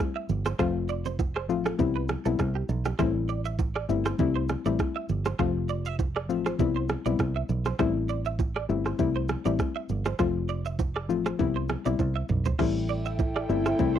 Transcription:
0.00 cross-stick, high bongo
0.16 E5
0.29 G1, low conga, shaker
0.45 C5, cross-stick, high bongo, low bongo, shaker
0.59 F1 F3 A3 C4 F4 C5, kick, cross-stick, low conga, shaker
0.89 D5, shaker
1.05 C5, low bongo, shaker
1.19 kick, high bongo, shaker
1.36 C5, cross-stick
1.49 A1 F3 A3 C4 F4, shaker
1.66 A4, cross-stick, high bongo, shaker
1.79 C2 G3 B3 C4 E4, kick, low conga, shaker
1.96 B4
2.08 cross-stick, low bongo, shaker
2.25 B1 G3 B3 C4 E4 A4, shaker
2.39 C2, kick, cross-stick, high bongo, shaker
2.55 G4
2.69 B1, low bongo, low conga, shaker
2.85 G4, cross-stick, high bongo, low bongo, shaker
2.99 A1 G3 A3 C4 E4 C5, kick, cross-stick, low conga, shaker
3.29 D5, shaker
3.45 E5, shaker
3.59 kick, high bongo, shaker
3.76 D5, cross-stick
3.89 G1 G3 A3 C4 E4, shaker
4.06 C5, cross-stick, high bongo, shaker
4.19 C2 G3 A3 C4 E4, kick, low conga, shaker
4.36 C5
4.49 cross-stick, low bongo, shaker
4.65 A1 G3 A3 C4 E4 D5, shaker
4.79 kick, cross-stick, high bongo, shaker
4.96 E5
5.09 G1, low conga, shaker
5.25 C5, cross-stick, high bongo, low bongo, shaker
5.39 F1 F3 A3 C4 F4 C5, kick, cross-stick, low conga, shaker
5.69 D5, shaker
5.85 E5, shaker
5.99 kick, high bongo, shaker
6.16 D5, cross-stick
6.29 A1 F3 A3 C4 F4, shaker
6.46 C5, cross-stick, high bongo, shaker
6.59 C2 G3 B3 C4 E4, kick, low conga, shaker
6.76 C5
6.89 cross-stick, low bongo, shaker
7.06 B1 G3 B3 C4 E4 D5, shaker
7.19 C2, kick, cross-stick, high bongo, shaker
7.36 E5
7.49 B1, low conga, shaker
7.66 C5, cross-stick, high bongo, low bongo, shaker
7.79 A1 G3 A3 C4 E4 C5, kick, cross-stick, low conga, shaker
8.09 D5, shaker
8.25 E5, shaker
8.39 kick, high bongo, shaker
8.56 D5, cross-stick
8.69 G1 G3 A3 C4 E4, shaker
8.86 C5, cross-stick, high bongo, shaker
8.99 C2 G3 A3 C4 E4, kick, low conga, shaker
9.16 C5
9.29 cross-stick, low bongo, shaker
9.45 A1 G3 A3 C4 E4 D5, shaker
9.59 kick, cross-stick, high bongo, shaker
9.76 E5
9.89 G1, low conga, shaker
10.05 C5, cross-stick, high bongo, low bongo, shaker
10.19 F1 F3 A3 C4 F4 C5, kick, cross-stick, low conga, shaker
10.49 D5, shaker
10.65 E5, shaker
10.79 kick, high bongo, shaker
10.96 D5, cross-stick
11.09 A1 F3 A3 C4 F4, shaker
11.26 C5, cross-stick, high bongo, shaker
11.39 C2 G3 B3 C4 E4, kick, low conga, shaker
11.56 C5
11.69 cross-stick, low bongo, shaker
11.85 B1 G3 B3 C4 E4 D5, shaker
11.99 C2, kick, high tom, high bongo, shaker
12.16 E5
12.29 B1, mid tom, low conga, shaker
12.45 C5, floor tom, high bongo, low bongo, shaker
12.59 A1 G3 A3 C4 E4 A4 C5 E5 G5, kick, cross-stick, crash, low conga, shaker
12.89 D5, shaker
13.05 E5, shaker
13.19 kick, high bongo, shaker
13.36 D5, cross-stick
13.49 G1 G3 A3 C4 E4, shaker
13.66 C5, cross-stick, high bongo, shaker
13.79 C2 G3 A3 C4 E4, kick, low conga, shaker
13.96 C5

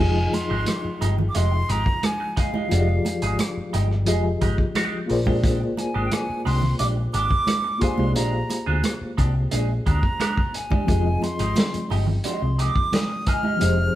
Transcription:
Already playing: F3 G#5
0.00 F1 G#3 D#4 F4 G4 G#4 D#5
0.16 muted clean electric guitar stroke
0.33 C6, muted clean electric guitar stroke, closed hi-hat, muted conga
0.50 G#1 G#3 D#4 G4
0.66 muted clean electric guitar stroke, cross-stick, closed hi-hat, high conga
0.85 muted fingered electric bass stroke
1.01 G1 G#3 D#4 G4, closed hi-hat, muted conga
1.18 muted clean electric guitar stroke, low conga
1.29 D6
1.35 F1 G#3 D#4 G4 C6, closed hi-hat
1.52 muted clean electric guitar stroke
1.69 G#1 G#3 D#4 G4 A#5, closed hi-hat
1.86 muted clean electric guitar stroke, kick
2.03 G#5, muted clean electric guitar stroke, cross-stick, closed hi-hat, high conga
2.20 muted clean electric guitar stroke
2.36 G#3 D#4 G#4 F5, kick, closed hi-hat
2.54 G#3 D#4 G4, high conga
2.68 F1 F3 G#3 F4 G4, closed hi-hat, muted conga
2.72 D#4 G4 G#4 D5
2.89 muted clean electric guitar stroke
3.05 muted clean electric guitar stroke, closed hi-hat, muted conga
3.22 G#1 G#3 D#4 G#4, closed hi-hat
3.39 muted clean electric guitar stroke, cross-stick, closed hi-hat, high conga
3.57 muted fingered electric bass stroke
3.73 G1 G#3 D#4 G4, closed hi-hat, muted conga
3.90 muted clean electric guitar stroke, cross-stick
4.05 F1 F3 G#3 D#4 F4 G4 G#4 D#5, closed hi-hat
4.24 muted clean electric guitar stroke
4.41 G#1 G#3 D#4 G4, kick, closed hi-hat
4.58 muted clean electric guitar stroke, kick
4.75 G#3 D#4 G4, cross-stick, closed hi-hat, high conga
5.06 A#3 F4 G#4 A#4, muted clean electric guitar stroke, open hi-hat
5.10 A#1 C5 D5
5.26 G#3 D4 G4, kick, high conga
5.44 G#3 D4 G4, kick, closed hi-hat, muted conga
5.61 muted clean electric guitar stroke
5.77 G#5, muted clean electric guitar stroke, closed hi-hat, muted conga
5.94 G#1 G#3 D4 G4
6.05 G5
6.11 G#5, muted clean electric guitar stroke, cross-stick, closed hi-hat, high conga
6.29 muted fingered electric bass stroke
6.45 C2 G#3 D4 G4 C6, open hi-hat, muted conga
6.62 muted clean electric guitar stroke, cross-stick, low conga
6.79 A#1 G#3 D4 G4 D6, closed hi-hat
6.97 muted clean electric guitar stroke
7.13 G#1 G#3 D4 G4 D6, closed hi-hat
7.31 muted clean electric guitar stroke, kick
7.47 muted clean electric guitar stroke, cross-stick, closed hi-hat, high conga
7.64 muted clean electric guitar stroke
7.78 G#3 A#3 F4 G4 G#4 C6, kick, closed hi-hat
7.82 D4 G#4 C5 F5, muted fingered electric bass stroke
7.98 C2 G#3 D4 G4, high conga
8.15 A#1 G#3 D4 G4 A#5, closed hi-hat, muted conga
8.33 muted clean electric guitar stroke
8.50 muted clean electric guitar stroke, closed hi-hat, muted conga
8.66 D2 G#3 D4 G#4
8.84 muted clean electric guitar stroke, cross-stick, closed hi-hat, high conga
9.01 muted fingered electric bass stroke
9.18 C2 G#3 D4 G4, kick, closed hi-hat, muted conga
9.35 muted clean electric guitar stroke
9.51 A#1 G#3 D4 G#4, closed hi-hat
9.69 muted clean electric guitar stroke
9.86 D2 G#3 D4 G4 A#5, kick, closed hi-hat
10.03 muted clean electric guitar stroke, kick
10.20 G#3 D4 G4, cross-stick, closed hi-hat, high conga
10.37 kick
10.54 G#5, muted clean electric guitar stroke, closed hi-hat
10.70 G#3 D4 G4, kick, high conga
10.85 F3 G#3 C4 F4, kick, closed hi-hat, muted conga
10.89 F1 D#4 G4 G#4 D#5
11.05 muted clean electric guitar stroke
11.22 C6, muted clean electric guitar stroke, closed hi-hat, muted conga
11.39 G#1 G#3 D#4 G4, closed hi-hat
11.56 muted clean electric guitar stroke, snare, closed hi-hat, high conga
11.74 muted fingered electric bass stroke, closed hi-hat
11.90 G1 G#3 D#4 G4, open hi-hat, muted conga
12.07 muted clean electric guitar stroke, low conga
12.24 G#3 D#4 G4 C6, muted fingered electric bass stroke, closed hi-hat
12.42 C2, muted clean electric guitar stroke
12.59 G#3 D#4 G4 D6, closed hi-hat
12.76 muted clean electric guitar stroke, kick
12.92 D#6, muted clean electric guitar stroke, snare, closed hi-hat, high conga
13.10 muted clean electric guitar stroke
13.26 G#3 D#4 G#4 F6, kick, closed hi-hat
13.43 G#3 D#4 G4, high conga
13.57 F3 C4 G4, muted conga
13.61 F1 G#3 D#4 G4 G#4 C5, closed hi-hat
13.78 muted clean electric guitar stroke

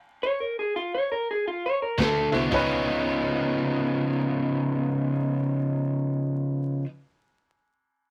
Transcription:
0.23 C#5
0.40 A#4
0.59 G#4
0.76 F4
0.94 C#5
1.12 A#4
1.31 G#4
1.48 F4
1.66 C#5
1.82 A#4
1.98 D2 D3 A3 A4, kick, snare, ride
2.32 C2 D3 B3 E4 F#4 C5, snare, ride
2.49 C#2 C#3 F3 D#4 F4, kick, crash
2.54 B3 D#4 B4 C#5

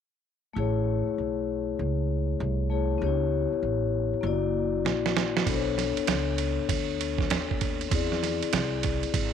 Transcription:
0.53 A1 A3 E4 G#4
0.59 C#5
1.08 muted upright bass stroke
1.18 B1
1.79 C#2
2.40 C2
2.70 A3 E4 G#4 C#5
2.98 C#2 B3 D4
3.02 G4 C#5
3.07 E4
3.52 muted upright bass stroke
3.62 A1
4.13 muted upright bass stroke
4.21 F#1 A#3 E4
4.25 F#4 D5
4.85 A#1, snare
5.06 snare
5.17 snare
5.37 snare
5.44 B1 B3 D4 A4, kick, ride
5.50 C5
5.56 C#5
5.78 snare, ride
5.97 muted upright bass stroke, ride
6.07 C#2, snare, hi-hat pedal, ride
6.38 ride
6.59 muted upright bass stroke
6.69 D2, kick, ride
7.01 ride
7.18 kick, snare
7.30 D#2, snare, hi-hat pedal, ride
7.51 kick
7.61 kick, ride
7.81 ride
7.89 E2 C4 E4 G#4, kick, ride
7.95 D5
8.12 snare
8.23 snare, ride
8.42 muted upright bass stroke, ride
8.53 C2, snare, hi-hat pedal, ride
8.83 kick, ride
9.03 muted upright bass stroke, ride
9.14 G#1, kick, ride

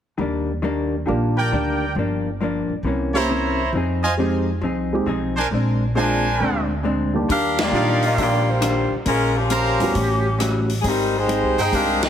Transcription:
0.18 D#2 D#3 G3 A#3 D4
0.62 D#3 G3 A#3 D4
1.06 A#1 D#3 G3 A#3 D4 F4 G4
1.37 A#4 D5 G5
1.52 D2 D#3 G3 A#3 D4
1.95 G1 G2 F3 A#3
1.99 D4
2.41 G2 F3 A#3 D4
2.69 muted upright bass stroke
2.83 C2 C3 E3 A#3
2.88 C#4
3.14 A#3 C#4 E4 G4 C5 C#5 A#5
3.29 C3 E3 A#3 C#4
3.73 F2 F3 C4 D#4
3.77 G#4
4.03 F4 C5 D#5 G#5
4.17 F3 G#3 C4 D#4 G4 G#4
4.61 C2 F3 C4 D#4 G#4
4.93 G#3 C4 D#4 G4
5.06 B1 F3 C4 D#4 G#4
5.37 D4 A#4 C5 G#5
5.51 A#1 A#2 G#3 C4 D4
5.95 A#2 G#3 C4 D4 F4 A#4 C5 G#5
6.40 D2 A#2 G#3 C4 D4
6.83 A#2 G#3 C4 D4
7.13 D#2 G3 A#3 D4 G4
7.29 D#2 D#3 G3 D4 F4 G4 A#4 F5, kick, open hi-hat
7.59 A#3 F4 G4 D5, snare, ride
7.72 A#2 D#3 G3 A#3 D4 D#4 F4 G4 D5 F5
8.02 A#3 F4 G4 D#5, open hi-hat
8.17 A#1 D#3 G3 D4 F4, kick, open hi-hat
8.22 A#3 F4 G4 D5
8.50 A#3 F4 G4 C5
8.61 D#3 G3 D4 F4, cross-stick, closed hi-hat
8.92 muted upright bass stroke
9.05 A#1 G#3 A#3 C#4 F4 G#4 A#4 C5, kick, open hi-hat
9.38 F3 C4 C#4 G4
9.50 A#3 C#4 G#4 A#4 C5 F5 A#5, closed hi-hat
9.79 E2 G3 B3 C#4 E4 F#4, open hi-hat
9.93 A1 A2 G3 C#4 F#4, kick, open hi-hat
10.39 A2 G3 C#4 F#4, cross-stick, closed hi-hat
10.70 open hi-hat
10.82 G#1 G#2 G3 C4 G#4, kick, open hi-hat
10.86 G3 C4 D#4 A#4
11.18 G#3 D#4 G4 C5
11.26 G#2 G3 C4 D#4, closed hi-hat
11.43 C2
11.58 G1 D#4 G#4 C5 G5, open hi-hat
11.71 C2 G#2 G3 C4 D4 D#4 G4 A#4, kick, open hi-hat
11.75 F5
12.03 C4 G4 G#4 D#5, snare, ride

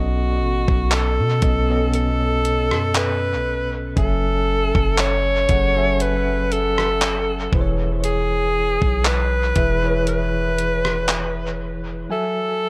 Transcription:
Already playing: B1 B2 B3 C#4 F#4 A4 D#5
0.41 A1
0.68 B1, kick
0.91 A4, clap, closed hi-hat
1.19 B2
1.42 B1 B2 B3 C#4 A4 D#5, kick, closed hi-hat
1.69 B2 B3 C#4 A4 D#5
1.94 A4, closed hi-hat
2.45 closed hi-hat
2.71 F#2, cross-stick
2.94 B4, clap, closed hi-hat
3.34 B1
3.96 F#1 F#3 C#4 A4 E5 G#5, kick, closed hi-hat
4.75 F#1, kick
4.98 C#5, clap, closed hi-hat
5.49 F#1 F#3 C#4 G#4 A4 F#5, kick, closed hi-hat
5.76 F#3 C#4 A4 E5 G#5
6.00 B4, closed hi-hat
6.52 A4, closed hi-hat
6.78 cross-stick
7.01 clap, closed hi-hat
7.52 E1 E3 E4 G#4 B4 C5, kick
7.61 C#5
8.04 G#4, closed hi-hat
8.82 B1, kick
9.05 B4, clap, closed hi-hat
9.55 E1 E3 E4 G#4 B4 E5, kick, closed hi-hat
9.83 E3 E4 G#4 B4 C#5
10.07 B4, closed hi-hat
10.58 closed hi-hat
10.85 cross-stick
11.08 clap, closed hi-hat
12.10 F#3 F#4 A4 E5 G#5

